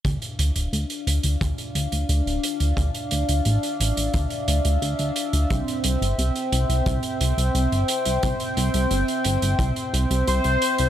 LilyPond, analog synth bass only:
\new Staff \with { instrumentName = "Analog synth bass" } { \clef bass \time 4/4 \key d \minor \tempo 4 = 88 d,16 r16 d,16 d,,16 d,16 r16 d,16 d,16 d,16 r16 d,16 d,16 d,16 d,,16 r16 d,16 | d,16 r16 d,16 d,16 a,,16 r16 a,,16 a,,16 d,16 r16 d,16 d,16 d,16 d,16 r16 d,16 | c,16 r16 c,16 g,,16 c,16 r16 c,16 c,16 c,16 r16 c,16 c,16 c,16 g,,16 r16 c,16 | c,16 r16 c,16 c,16 g,,16 r16 g,,16 g,,16 c,16 r16 c,16 c,16 c,16 c,16 r16 c,16 | }